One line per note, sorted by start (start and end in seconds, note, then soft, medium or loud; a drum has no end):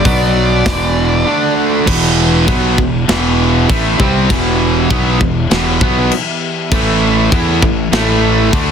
0.00 1.52 D5 medium
0.05 0.62 B1 loud
0.05 0.64 B2 loud
0.05 0.65 F#3 loud
0.05 0.65 B3 loud
0.05 kick loud
0.05 open hi-hat medium
0.65 1.25 E2 medium
0.65 1.25 B2 medium
0.65 1.26 E3 medium
0.65 kick loud
0.65 snare loud
0.65 open hi-hat medium
1.26 1.86 D3 loud
1.26 1.86 A3 medium
1.26 1.86 D4 loud
1.86 2.44 E1 medium
1.86 2.47 E2 medium
1.86 2.46 B2 loud
1.86 2.47 E3 loud
1.86 8.71 E3 medium
1.86 6.68 B3 medium
1.86 6.68 G4 medium
1.86 8.71 E5 medium
1.86 kick loud
1.86 crash loud
1.86 crash medium
2.47 2.76 B1 loud
2.47 2.77 B2 loud
2.47 2.77 F#3 loud
2.47 2.77 B3 loud
2.47 kick loud
2.47 crash medium
2.78 3.06 E1 medium
2.78 3.02 E2 medium
2.78 3.03 B2 medium
2.78 kick medium
3.08 3.65 E1 medium
3.08 3.68 E2 medium
3.08 3.68 B2 loud
3.08 3.68 E3 loud
3.08 snare loud
3.08 crash medium
3.69 3.98 A1 loud
3.69 3.98 A2 loud
3.69 3.99 E3 loud
3.69 3.99 A3 loud
3.69 kick loud
3.69 crash medium
3.99 4.28 C2 medium
3.99 4.28 C3 loud
3.99 4.29 G3 loud
3.99 4.29 C4 loud
3.99 kick loud
4.30 4.86 E1 medium
4.30 4.89 E2 loud
4.30 4.89 B2 loud
4.30 4.90 E3 loud
4.30 kick loud
4.30 crash medium
4.90 5.18 B1 medium
4.90 5.19 B2 loud
4.90 5.20 F#3 loud
4.90 5.20 B3 loud
4.90 kick loud
4.90 crash medium
5.20 5.49 E1 medium
5.20 5.45 E2 medium
5.20 5.45 B2 medium
5.20 kick medium
5.50 5.79 E1 medium
5.50 5.80 E2 medium
5.50 5.80 B2 medium
5.50 5.80 E3 loud
5.50 snare loud
5.50 crash medium
5.81 6.09 B1 loud
5.81 6.11 B2 medium
5.81 6.11 F#3 medium
5.81 6.11 B3 loud
5.81 kick loud
6.12 crash medium
6.71 7.28 A1 medium
6.71 7.31 A2 loud
6.71 7.30 E3 loud
6.71 8.71 A3 medium
6.71 7.32 A3 loud
6.71 8.71 A4 medium
6.71 kick loud
6.71 crash medium
7.32 7.60 E2 loud
7.32 7.61 E3 loud
7.32 7.62 B3 loud
7.32 7.62 E4 loud
7.32 kick loud
7.32 crash medium
7.62 7.91 A1 medium
7.62 7.87 A2 medium
7.62 7.87 E3 medium
7.62 kick loud
7.92 8.49 A1 loud
7.92 8.52 A2 loud
7.92 8.53 E3 medium
7.92 8.52 A3 medium
7.92 snare loud
7.92 crash medium
8.53 8.71 D2 loud
8.53 8.71 D3 loud
8.53 8.71 A3 loud
8.53 8.71 D4 loud
8.53 kick loud
8.53 crash medium